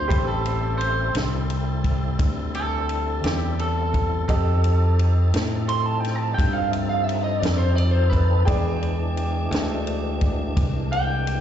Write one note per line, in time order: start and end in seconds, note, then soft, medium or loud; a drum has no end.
0.00 0.27 C5 medium
0.08 1.12 A1 medium
0.08 4.25 G3 medium
0.08 4.25 C4 medium
0.08 4.25 E4 medium
0.08 4.24 G4 medium
0.08 4.26 A4 medium
0.08 4.25 C5 medium
0.08 4.24 B5 soft
0.08 kick loud
0.08 ride medium
0.28 0.78 A4 medium
0.45 ride medium
0.78 1.13 C5 medium
0.78 ride medium
1.15 2.17 C2 medium
1.15 snare loud
1.15 ride medium
1.50 ride medium
1.84 kick medium
1.84 ride medium
2.19 3.21 D2 medium
2.19 kick loud
2.19 ride medium
2.55 3.23 A4 loud
2.55 ride medium
2.89 ride medium
3.24 4.26 E2 medium
3.24 3.58 G4 medium
3.24 snare loud
3.24 ride medium
3.59 4.27 A4 medium
3.59 ride medium
3.94 kick medium
3.94 ride soft
4.28 5.31 F2 medium
4.28 8.43 F3 medium
4.28 8.43 C4 medium
4.28 8.43 D#4 medium
4.28 8.43 G4 medium
4.28 8.43 A4 medium
4.28 4.96 A4 medium
4.28 8.43 A4 medium
4.28 8.44 D#5 medium
4.28 kick loud
4.28 ride medium
4.64 ride medium
4.99 ride medium
5.34 6.35 A2 medium
5.34 snare loud
5.34 ride medium
5.69 5.86 C6 loud
5.69 ride medium
5.86 6.00 A5 medium
6.00 6.16 G5 medium
6.04 snare soft
6.04 ride medium
6.16 6.34 A5 medium
6.34 6.53 G5 medium
6.39 7.40 G2 medium
6.39 kick loud
6.39 ride medium
6.53 6.71 F5 medium
6.71 6.89 E5 medium
6.71 ride medium
6.89 7.03 F5 medium
7.04 7.23 E5 medium
7.09 ride medium
7.24 7.39 D#5 medium
7.39 8.44 F2 loud
7.39 7.58 D5 loud
7.43 snare loud
7.43 ride medium
7.58 7.76 C5 medium
7.76 7.91 D5 medium
7.76 ride medium
7.91 8.09 C5 medium
8.10 8.79 B4 medium
8.10 kick medium
8.10 ride soft
8.45 9.49 E2 medium
8.45 11.41 E3 medium
8.45 11.41 G#3 medium
8.45 11.41 D4 medium
8.45 11.41 G#4 soft
8.45 11.41 D5 medium
8.45 11.41 G5 medium
8.45 kick loud
8.45 ride medium
8.83 ride medium
9.17 ride medium
9.51 10.53 D2 loud
9.51 snare loud
9.51 ride medium
9.87 ride medium
10.21 kick medium
10.21 ride medium
10.57 11.41 C2 medium
10.57 kick loud
10.57 ride medium
10.92 11.41 G5 loud
10.92 ride medium
11.27 ride medium